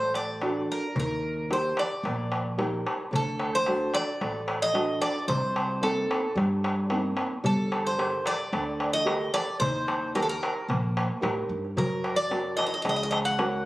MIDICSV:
0, 0, Header, 1, 5, 480
1, 0, Start_track
1, 0, Tempo, 540054
1, 857, Time_signature, 4, 2, 24, 8
1, 12136, End_track
2, 0, Start_track
2, 0, Title_t, "Bouzouki"
2, 0, Program_c, 0, 25
2, 0, Note_on_c, 0, 72, 82
2, 132, Note_off_c, 0, 72, 0
2, 136, Note_on_c, 0, 74, 93
2, 582, Note_off_c, 0, 74, 0
2, 636, Note_on_c, 0, 70, 80
2, 873, Note_off_c, 0, 70, 0
2, 885, Note_on_c, 0, 70, 76
2, 1318, Note_off_c, 0, 70, 0
2, 1358, Note_on_c, 0, 72, 80
2, 1571, Note_off_c, 0, 72, 0
2, 1593, Note_on_c, 0, 74, 75
2, 2269, Note_off_c, 0, 74, 0
2, 2805, Note_on_c, 0, 69, 79
2, 3156, Note_on_c, 0, 72, 94
2, 3161, Note_off_c, 0, 69, 0
2, 3482, Note_off_c, 0, 72, 0
2, 3506, Note_on_c, 0, 74, 99
2, 4066, Note_off_c, 0, 74, 0
2, 4108, Note_on_c, 0, 75, 102
2, 4438, Note_off_c, 0, 75, 0
2, 4457, Note_on_c, 0, 74, 90
2, 4680, Note_off_c, 0, 74, 0
2, 4694, Note_on_c, 0, 72, 88
2, 5181, Note_on_c, 0, 69, 70
2, 5190, Note_off_c, 0, 72, 0
2, 5625, Note_off_c, 0, 69, 0
2, 6629, Note_on_c, 0, 69, 77
2, 6991, Note_on_c, 0, 72, 90
2, 6993, Note_off_c, 0, 69, 0
2, 7345, Note_off_c, 0, 72, 0
2, 7349, Note_on_c, 0, 74, 97
2, 7937, Note_off_c, 0, 74, 0
2, 7941, Note_on_c, 0, 75, 101
2, 8273, Note_off_c, 0, 75, 0
2, 8299, Note_on_c, 0, 74, 90
2, 8520, Note_off_c, 0, 74, 0
2, 8530, Note_on_c, 0, 72, 93
2, 8979, Note_off_c, 0, 72, 0
2, 9023, Note_on_c, 0, 70, 74
2, 9077, Note_off_c, 0, 70, 0
2, 9088, Note_on_c, 0, 69, 65
2, 9145, Note_off_c, 0, 69, 0
2, 9149, Note_on_c, 0, 70, 75
2, 9475, Note_off_c, 0, 70, 0
2, 10472, Note_on_c, 0, 70, 72
2, 10811, Note_on_c, 0, 74, 85
2, 10834, Note_off_c, 0, 70, 0
2, 11147, Note_off_c, 0, 74, 0
2, 11169, Note_on_c, 0, 75, 87
2, 11234, Note_off_c, 0, 75, 0
2, 11257, Note_on_c, 0, 75, 67
2, 11311, Note_off_c, 0, 75, 0
2, 11322, Note_on_c, 0, 75, 73
2, 11377, Note_off_c, 0, 75, 0
2, 11395, Note_on_c, 0, 75, 67
2, 11447, Note_off_c, 0, 75, 0
2, 11458, Note_on_c, 0, 75, 72
2, 11512, Note_off_c, 0, 75, 0
2, 11521, Note_on_c, 0, 75, 61
2, 11573, Note_off_c, 0, 75, 0
2, 11583, Note_on_c, 0, 75, 78
2, 11639, Note_off_c, 0, 75, 0
2, 11649, Note_on_c, 0, 75, 67
2, 11707, Note_off_c, 0, 75, 0
2, 11778, Note_on_c, 0, 78, 94
2, 12129, Note_off_c, 0, 78, 0
2, 12136, End_track
3, 0, Start_track
3, 0, Title_t, "Nylon-string guitar"
3, 0, Program_c, 1, 24
3, 0, Note_on_c, 1, 57, 62
3, 371, Note_off_c, 1, 57, 0
3, 375, Note_on_c, 1, 62, 55
3, 381, Note_on_c, 1, 66, 49
3, 387, Note_on_c, 1, 69, 60
3, 759, Note_off_c, 1, 62, 0
3, 764, Note_off_c, 1, 66, 0
3, 766, Note_off_c, 1, 69, 0
3, 857, Note_on_c, 1, 51, 69
3, 1323, Note_off_c, 1, 51, 0
3, 1336, Note_on_c, 1, 63, 49
3, 1341, Note_on_c, 1, 67, 44
3, 1341, Note_on_c, 1, 70, 53
3, 1720, Note_off_c, 1, 63, 0
3, 1723, Note_off_c, 1, 70, 0
3, 1724, Note_off_c, 1, 67, 0
3, 1820, Note_on_c, 1, 58, 59
3, 2284, Note_off_c, 1, 58, 0
3, 2291, Note_on_c, 1, 63, 48
3, 2295, Note_on_c, 1, 67, 47
3, 2296, Note_on_c, 1, 70, 57
3, 2678, Note_off_c, 1, 67, 0
3, 2679, Note_off_c, 1, 63, 0
3, 2680, Note_off_c, 1, 70, 0
3, 2764, Note_on_c, 1, 50, 70
3, 3236, Note_off_c, 1, 50, 0
3, 3261, Note_on_c, 1, 62, 53
3, 3266, Note_on_c, 1, 66, 44
3, 3270, Note_on_c, 1, 69, 57
3, 3643, Note_off_c, 1, 62, 0
3, 3647, Note_off_c, 1, 66, 0
3, 3648, Note_off_c, 1, 69, 0
3, 3743, Note_on_c, 1, 57, 68
3, 4206, Note_off_c, 1, 57, 0
3, 4208, Note_on_c, 1, 62, 53
3, 4213, Note_on_c, 1, 66, 47
3, 4217, Note_on_c, 1, 69, 56
3, 4596, Note_off_c, 1, 62, 0
3, 4598, Note_off_c, 1, 66, 0
3, 4601, Note_off_c, 1, 69, 0
3, 4695, Note_on_c, 1, 48, 68
3, 5162, Note_off_c, 1, 48, 0
3, 5167, Note_on_c, 1, 58, 51
3, 5174, Note_on_c, 1, 60, 45
3, 5174, Note_on_c, 1, 63, 58
3, 5555, Note_off_c, 1, 58, 0
3, 5557, Note_off_c, 1, 63, 0
3, 5559, Note_off_c, 1, 60, 0
3, 5649, Note_on_c, 1, 55, 63
3, 6118, Note_off_c, 1, 55, 0
3, 6128, Note_on_c, 1, 58, 54
3, 6131, Note_on_c, 1, 60, 45
3, 6142, Note_on_c, 1, 63, 61
3, 6515, Note_off_c, 1, 58, 0
3, 6516, Note_off_c, 1, 60, 0
3, 6524, Note_off_c, 1, 63, 0
3, 6610, Note_on_c, 1, 55, 72
3, 7078, Note_off_c, 1, 55, 0
3, 7087, Note_on_c, 1, 67, 55
3, 7094, Note_on_c, 1, 70, 54
3, 7097, Note_on_c, 1, 69, 47
3, 7475, Note_off_c, 1, 67, 0
3, 7479, Note_off_c, 1, 70, 0
3, 7480, Note_off_c, 1, 69, 0
3, 7577, Note_on_c, 1, 50, 69
3, 8042, Note_off_c, 1, 50, 0
3, 8046, Note_on_c, 1, 67, 51
3, 8053, Note_on_c, 1, 69, 47
3, 8058, Note_on_c, 1, 70, 62
3, 8434, Note_off_c, 1, 67, 0
3, 8439, Note_off_c, 1, 69, 0
3, 8439, Note_off_c, 1, 70, 0
3, 8528, Note_on_c, 1, 51, 76
3, 8997, Note_off_c, 1, 51, 0
3, 9020, Note_on_c, 1, 63, 50
3, 9024, Note_on_c, 1, 67, 47
3, 9024, Note_on_c, 1, 70, 56
3, 9402, Note_off_c, 1, 63, 0
3, 9404, Note_off_c, 1, 67, 0
3, 9404, Note_off_c, 1, 70, 0
3, 9503, Note_on_c, 1, 58, 63
3, 9963, Note_on_c, 1, 63, 50
3, 9964, Note_off_c, 1, 58, 0
3, 9969, Note_on_c, 1, 67, 51
3, 9973, Note_on_c, 1, 70, 61
3, 10352, Note_off_c, 1, 63, 0
3, 10355, Note_off_c, 1, 67, 0
3, 10358, Note_off_c, 1, 70, 0
3, 10458, Note_on_c, 1, 54, 66
3, 10922, Note_off_c, 1, 54, 0
3, 10936, Note_on_c, 1, 61, 51
3, 10943, Note_on_c, 1, 70, 55
3, 10944, Note_on_c, 1, 66, 45
3, 11319, Note_off_c, 1, 61, 0
3, 11323, Note_off_c, 1, 70, 0
3, 11324, Note_off_c, 1, 66, 0
3, 11414, Note_on_c, 1, 49, 62
3, 11879, Note_off_c, 1, 49, 0
3, 11899, Note_on_c, 1, 61, 52
3, 11903, Note_on_c, 1, 70, 61
3, 11905, Note_on_c, 1, 66, 53
3, 12136, Note_off_c, 1, 61, 0
3, 12136, Note_off_c, 1, 66, 0
3, 12136, Note_off_c, 1, 70, 0
3, 12136, End_track
4, 0, Start_track
4, 0, Title_t, "Upright bass"
4, 0, Program_c, 2, 32
4, 0, Note_on_c, 2, 33, 80
4, 569, Note_off_c, 2, 33, 0
4, 852, Note_on_c, 2, 39, 90
4, 1526, Note_off_c, 2, 39, 0
4, 1808, Note_on_c, 2, 34, 86
4, 2483, Note_off_c, 2, 34, 0
4, 2780, Note_on_c, 2, 38, 89
4, 3451, Note_off_c, 2, 38, 0
4, 3743, Note_on_c, 2, 33, 83
4, 4413, Note_off_c, 2, 33, 0
4, 4691, Note_on_c, 2, 36, 87
4, 5365, Note_off_c, 2, 36, 0
4, 5649, Note_on_c, 2, 43, 92
4, 6323, Note_off_c, 2, 43, 0
4, 6611, Note_on_c, 2, 31, 86
4, 7285, Note_off_c, 2, 31, 0
4, 7577, Note_on_c, 2, 38, 87
4, 8249, Note_off_c, 2, 38, 0
4, 8542, Note_on_c, 2, 39, 89
4, 9211, Note_off_c, 2, 39, 0
4, 9496, Note_on_c, 2, 34, 84
4, 9832, Note_off_c, 2, 34, 0
4, 9975, Note_on_c, 2, 45, 85
4, 10191, Note_off_c, 2, 45, 0
4, 10215, Note_on_c, 2, 43, 75
4, 10431, Note_off_c, 2, 43, 0
4, 10461, Note_on_c, 2, 42, 93
4, 11130, Note_off_c, 2, 42, 0
4, 11420, Note_on_c, 2, 37, 89
4, 12090, Note_off_c, 2, 37, 0
4, 12136, End_track
5, 0, Start_track
5, 0, Title_t, "Darbuka"
5, 127, Note_on_c, 9, 63, 72
5, 216, Note_off_c, 9, 63, 0
5, 369, Note_on_c, 9, 63, 74
5, 458, Note_off_c, 9, 63, 0
5, 850, Note_on_c, 9, 64, 87
5, 939, Note_off_c, 9, 64, 0
5, 1214, Note_on_c, 9, 63, 26
5, 1302, Note_off_c, 9, 63, 0
5, 1339, Note_on_c, 9, 63, 63
5, 1427, Note_off_c, 9, 63, 0
5, 1573, Note_on_c, 9, 63, 78
5, 1662, Note_off_c, 9, 63, 0
5, 1703, Note_on_c, 9, 63, 29
5, 1792, Note_off_c, 9, 63, 0
5, 1823, Note_on_c, 9, 63, 69
5, 1912, Note_off_c, 9, 63, 0
5, 1947, Note_on_c, 9, 63, 28
5, 2036, Note_off_c, 9, 63, 0
5, 2059, Note_on_c, 9, 63, 72
5, 2148, Note_off_c, 9, 63, 0
5, 2299, Note_on_c, 9, 63, 70
5, 2388, Note_off_c, 9, 63, 0
5, 2423, Note_on_c, 9, 63, 24
5, 2512, Note_off_c, 9, 63, 0
5, 2547, Note_on_c, 9, 63, 68
5, 2635, Note_off_c, 9, 63, 0
5, 2664, Note_on_c, 9, 63, 28
5, 2753, Note_off_c, 9, 63, 0
5, 2785, Note_on_c, 9, 64, 82
5, 2874, Note_off_c, 9, 64, 0
5, 2901, Note_on_c, 9, 63, 25
5, 2990, Note_off_c, 9, 63, 0
5, 3017, Note_on_c, 9, 63, 73
5, 3106, Note_off_c, 9, 63, 0
5, 3256, Note_on_c, 9, 63, 69
5, 3345, Note_off_c, 9, 63, 0
5, 3384, Note_on_c, 9, 63, 26
5, 3472, Note_off_c, 9, 63, 0
5, 3498, Note_on_c, 9, 63, 76
5, 3587, Note_off_c, 9, 63, 0
5, 3623, Note_on_c, 9, 63, 27
5, 3712, Note_off_c, 9, 63, 0
5, 3745, Note_on_c, 9, 63, 69
5, 3833, Note_off_c, 9, 63, 0
5, 3980, Note_on_c, 9, 63, 79
5, 4069, Note_off_c, 9, 63, 0
5, 4220, Note_on_c, 9, 63, 75
5, 4309, Note_off_c, 9, 63, 0
5, 4342, Note_on_c, 9, 63, 29
5, 4431, Note_off_c, 9, 63, 0
5, 4458, Note_on_c, 9, 63, 73
5, 4547, Note_off_c, 9, 63, 0
5, 4585, Note_on_c, 9, 63, 31
5, 4674, Note_off_c, 9, 63, 0
5, 4706, Note_on_c, 9, 64, 91
5, 4795, Note_off_c, 9, 64, 0
5, 4826, Note_on_c, 9, 63, 25
5, 4915, Note_off_c, 9, 63, 0
5, 4942, Note_on_c, 9, 63, 80
5, 5031, Note_off_c, 9, 63, 0
5, 5183, Note_on_c, 9, 63, 65
5, 5272, Note_off_c, 9, 63, 0
5, 5310, Note_on_c, 9, 63, 26
5, 5399, Note_off_c, 9, 63, 0
5, 5428, Note_on_c, 9, 63, 83
5, 5517, Note_off_c, 9, 63, 0
5, 5548, Note_on_c, 9, 63, 31
5, 5637, Note_off_c, 9, 63, 0
5, 5666, Note_on_c, 9, 63, 74
5, 5755, Note_off_c, 9, 63, 0
5, 5904, Note_on_c, 9, 63, 79
5, 5993, Note_off_c, 9, 63, 0
5, 6133, Note_on_c, 9, 63, 76
5, 6222, Note_off_c, 9, 63, 0
5, 6251, Note_on_c, 9, 63, 28
5, 6340, Note_off_c, 9, 63, 0
5, 6370, Note_on_c, 9, 63, 76
5, 6458, Note_off_c, 9, 63, 0
5, 6497, Note_on_c, 9, 63, 30
5, 6586, Note_off_c, 9, 63, 0
5, 6617, Note_on_c, 9, 64, 85
5, 6706, Note_off_c, 9, 64, 0
5, 6861, Note_on_c, 9, 63, 86
5, 6950, Note_off_c, 9, 63, 0
5, 7103, Note_on_c, 9, 63, 75
5, 7192, Note_off_c, 9, 63, 0
5, 7226, Note_on_c, 9, 63, 29
5, 7315, Note_off_c, 9, 63, 0
5, 7339, Note_on_c, 9, 63, 81
5, 7428, Note_off_c, 9, 63, 0
5, 7465, Note_on_c, 9, 63, 33
5, 7554, Note_off_c, 9, 63, 0
5, 7583, Note_on_c, 9, 63, 77
5, 7672, Note_off_c, 9, 63, 0
5, 7823, Note_on_c, 9, 63, 73
5, 7912, Note_off_c, 9, 63, 0
5, 8059, Note_on_c, 9, 63, 82
5, 8148, Note_off_c, 9, 63, 0
5, 8185, Note_on_c, 9, 63, 27
5, 8274, Note_off_c, 9, 63, 0
5, 8302, Note_on_c, 9, 63, 78
5, 8391, Note_off_c, 9, 63, 0
5, 8425, Note_on_c, 9, 63, 33
5, 8514, Note_off_c, 9, 63, 0
5, 8545, Note_on_c, 9, 64, 96
5, 8634, Note_off_c, 9, 64, 0
5, 8666, Note_on_c, 9, 63, 28
5, 8755, Note_off_c, 9, 63, 0
5, 8782, Note_on_c, 9, 63, 78
5, 8871, Note_off_c, 9, 63, 0
5, 8908, Note_on_c, 9, 63, 28
5, 8997, Note_off_c, 9, 63, 0
5, 9026, Note_on_c, 9, 63, 74
5, 9115, Note_off_c, 9, 63, 0
5, 9158, Note_on_c, 9, 63, 28
5, 9247, Note_off_c, 9, 63, 0
5, 9270, Note_on_c, 9, 63, 79
5, 9359, Note_off_c, 9, 63, 0
5, 9508, Note_on_c, 9, 63, 65
5, 9508, Note_on_c, 9, 64, 66
5, 9597, Note_off_c, 9, 63, 0
5, 9597, Note_off_c, 9, 64, 0
5, 9750, Note_on_c, 9, 63, 78
5, 9839, Note_off_c, 9, 63, 0
5, 9865, Note_on_c, 9, 63, 27
5, 9954, Note_off_c, 9, 63, 0
5, 9985, Note_on_c, 9, 63, 74
5, 10073, Note_off_c, 9, 63, 0
5, 10109, Note_on_c, 9, 63, 26
5, 10198, Note_off_c, 9, 63, 0
5, 10351, Note_on_c, 9, 63, 26
5, 10440, Note_off_c, 9, 63, 0
5, 10466, Note_on_c, 9, 64, 83
5, 10555, Note_off_c, 9, 64, 0
5, 10595, Note_on_c, 9, 63, 25
5, 10684, Note_off_c, 9, 63, 0
5, 10703, Note_on_c, 9, 63, 74
5, 10792, Note_off_c, 9, 63, 0
5, 10944, Note_on_c, 9, 63, 71
5, 11032, Note_off_c, 9, 63, 0
5, 11068, Note_on_c, 9, 63, 27
5, 11157, Note_off_c, 9, 63, 0
5, 11186, Note_on_c, 9, 63, 72
5, 11275, Note_off_c, 9, 63, 0
5, 11307, Note_on_c, 9, 63, 26
5, 11396, Note_off_c, 9, 63, 0
5, 11420, Note_on_c, 9, 63, 73
5, 11509, Note_off_c, 9, 63, 0
5, 11662, Note_on_c, 9, 63, 76
5, 11751, Note_off_c, 9, 63, 0
5, 11899, Note_on_c, 9, 63, 74
5, 11988, Note_off_c, 9, 63, 0
5, 12018, Note_on_c, 9, 63, 27
5, 12107, Note_off_c, 9, 63, 0
5, 12136, End_track
0, 0, End_of_file